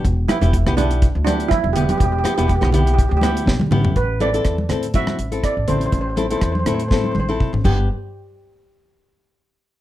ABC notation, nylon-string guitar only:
X:1
M:4/4
L:1/16
Q:"Swing 16ths" 1/4=122
K:Ador
V:1 name="Nylon-string guitar"
z2 [B,EG] [B,EG] z [B,EG] [B,EG]2 z2 [B,EG]2 z2 [B,EG]2 | z2 [B,EG] [B,EG] z [B,EG] [B,EG]2 z2 [B,EG]2 z2 [B,EG]2 | z2 [CEA] [CEA]2 z [CEA] z [CEF]2 z [CEA]2 z [CEA]2 | z2 [CEA] [CEA]2 z [CEA] z [CEA]2 z [CEA]2 z [B,DG]2 |
z16 |]